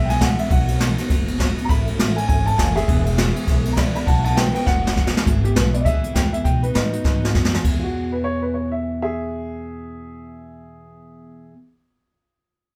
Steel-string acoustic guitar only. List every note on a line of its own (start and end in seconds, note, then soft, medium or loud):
0.07 0.19 E3 soft
0.07 0.19 G#3 soft
0.07 0.20 B3 medium
0.07 0.20 E4 medium
0.19 0.38 E2 medium
0.19 0.38 B2 medium
0.19 0.38 E3 medium
0.19 0.39 G#3 medium
0.19 0.38 B3 medium
0.19 0.36 E4 medium
0.37 0.50 E3 soft
0.37 0.50 G#3 medium
0.37 0.49 B3 medium
0.37 0.50 E4 medium
0.49 0.68 B2 medium
0.49 0.68 F#3 medium
0.49 0.68 B3 medium
0.49 0.67 D#4 medium
0.49 0.65 F#4 medium
0.67 0.78 B3 soft
0.67 0.79 D#4 soft
0.67 0.79 F#4 medium
0.78 0.97 B2 medium
0.78 0.98 F#3 medium
0.78 0.98 B3 medium
0.78 0.97 D#4 medium
0.78 0.96 F#4 medium
0.97 1.09 B3 medium
0.97 1.10 D#4 medium
0.97 1.09 F#4 medium
1.08 1.27 F#3 medium
1.08 1.28 B3 medium
1.08 1.27 D#4 medium
1.08 1.25 F#4 medium
1.26 1.38 B3 medium
1.26 1.39 D#4 medium
1.26 1.39 F#4 medium
1.38 1.57 B2 loud
1.38 1.57 F#3 medium
1.38 1.58 B3 loud
1.38 1.56 D#4 loud
1.38 1.54 F#4 loud
1.56 1.69 B3 medium
1.56 1.69 D#4 medium
1.56 1.68 F#4 medium
1.68 1.87 A2 medium
1.68 1.87 E3 medium
1.68 1.87 A3 medium
1.68 1.87 C#4 medium
1.68 1.85 E4 medium
1.87 1.98 A3 soft
1.87 1.98 C#4 soft
1.87 1.99 E4 medium
1.98 2.16 A2 medium
1.98 2.17 E3 medium
1.98 2.17 A3 medium
1.98 2.16 C#4 medium
1.98 2.15 E4 medium
2.16 2.28 A3 soft
2.16 2.29 C#4 medium
2.16 2.28 E4 medium
2.28 2.46 E3 medium
2.28 2.47 A3 medium
2.28 2.45 C#4 medium
2.28 2.44 E4 medium
2.45 2.57 A3 soft
2.45 2.57 C#4 soft
2.45 2.58 E4 medium
2.56 2.75 A2 loud
2.56 2.76 E3 medium
2.56 2.76 A3 medium
2.56 2.75 C#4 medium
2.56 2.73 E4 medium
2.74 2.88 A3 medium
2.74 2.88 C#4 medium
2.74 2.87 E4 medium
2.87 3.06 E2 medium
2.87 3.06 B2 medium
2.87 3.06 E3 medium
2.87 3.06 G#3 medium
2.87 3.05 B3 medium
2.87 3.03 E4 medium
3.04 3.17 E3 soft
3.04 3.17 G#3 soft
3.04 3.18 B3 medium
3.04 3.17 E4 medium
3.17 3.35 E2 medium
3.17 3.36 B2 medium
3.17 3.36 E3 medium
3.17 3.36 G#3 medium
3.17 3.35 B3 medium
3.17 3.33 E4 loud
3.35 3.45 E3 medium
3.35 3.46 G#3 medium
3.35 3.47 B3 medium
3.35 3.47 E4 medium
3.46 3.65 E3 medium
3.46 3.66 G#3 medium
3.46 3.64 B3 medium
3.46 3.63 E4 medium
3.64 3.76 E3 soft
3.64 3.77 G#3 medium
3.64 3.77 B3 medium
3.64 3.77 E4 medium
3.76 3.95 E2 medium
3.76 3.95 B2 medium
3.76 3.95 E3 medium
3.76 3.96 G#3 medium
3.76 3.95 B3 loud
3.76 3.93 E4 loud
3.94 4.07 E3 medium
3.94 4.08 G#3 soft
3.94 4.07 B3 medium
3.94 4.07 E4 medium
4.07 4.25 B2 medium
4.07 4.25 F#3 medium
4.07 4.26 B3 medium
4.07 4.24 D#4 medium
4.07 4.22 F#4 medium
4.24 4.36 B3 soft
4.24 4.37 D#4 medium
4.24 4.36 F#4 medium
4.36 4.55 B2 medium
4.36 4.55 F#3 medium
4.36 4.55 B3 medium
4.36 4.54 D#4 medium
4.36 4.53 F#4 medium
4.54 4.65 B3 medium
4.54 4.66 D#4 medium
4.54 4.66 F#4 medium
4.65 4.84 F#3 medium
4.65 4.84 B3 medium
4.65 4.84 D#4 medium
4.65 4.82 F#4 medium
4.83 4.95 B3 soft
4.83 4.96 D#4 medium
4.83 4.96 F#4 medium
4.95 5.14 B2 medium
4.95 5.14 F#3 medium
4.95 5.14 B3 medium
4.95 5.14 D#4 loud
4.95 5.12 F#4 medium
5.13 5.26 B3 medium
5.13 5.26 D#4 medium
5.13 5.26 F#4 medium
5.25 5.44 E2 medium
5.25 5.44 B2 medium
5.25 5.45 E3 medium
5.25 5.45 B3 medium
5.25 5.43 E4 medium
5.25 5.42 G#4 loud
5.43 5.54 E3 soft
5.43 5.55 B3 soft
5.43 5.56 E4 soft
5.43 5.56 G#4 medium
5.55 5.73 E3 medium
5.55 5.74 B3 medium
5.55 5.73 E4 medium
5.55 5.72 G#4 medium
5.73 5.86 E3 soft
5.73 5.86 B3 soft
5.73 5.86 E4 medium
5.73 5.85 G#4 medium
5.86 6.04 E2 medium
5.86 6.04 B2 medium
5.86 6.04 E3 medium
5.86 6.04 B3 medium
5.86 6.04 E4 loud
5.86 6.02 G#4 medium
6.03 6.14 E3 soft
6.03 6.15 B3 soft
6.03 6.16 E4 medium
6.03 6.15 G#4 medium
6.15 6.33 E3 medium
6.15 6.34 B3 medium
6.15 6.32 E4 medium
6.15 6.31 G#4 medium
6.33 6.45 E3 soft
6.33 6.45 B3 soft
6.33 6.45 E4 medium
6.33 6.45 G#4 medium
6.45 6.63 B2 medium
6.45 6.64 F#3 medium
6.45 6.64 B3 medium
6.45 6.63 D#4 medium
6.45 6.62 F#4 medium
6.63 6.74 B3 soft
6.63 6.75 D#4 medium
6.63 6.75 F#4 soft
6.74 6.92 F#3 medium
6.74 6.93 B3 medium
6.74 6.92 D#4 medium
6.74 6.91 F#4 medium
6.92 7.04 B3 soft
6.92 7.05 D#4 medium
6.92 7.04 F#4 medium
7.04 7.23 B2 medium
7.04 7.23 F#3 medium
7.04 7.23 B3 medium
7.04 7.22 D#4 medium
7.04 7.21 F#4 medium
7.22 7.34 B3 soft
7.22 7.35 D#4 soft
7.22 7.34 F#4 medium
7.33 7.52 F#3 medium
7.33 7.53 B3 medium
7.33 7.52 D#4 medium
7.33 7.50 F#4 medium
7.51 7.66 B3 medium
7.51 7.65 D#4 medium
7.51 7.64 F#4 medium
7.61 11.52 E2 medium
7.61 11.53 B2 medium
7.67 11.55 E3 medium
7.67 11.56 B3 medium
7.67 11.57 E4 medium
7.73 11.58 G#4 medium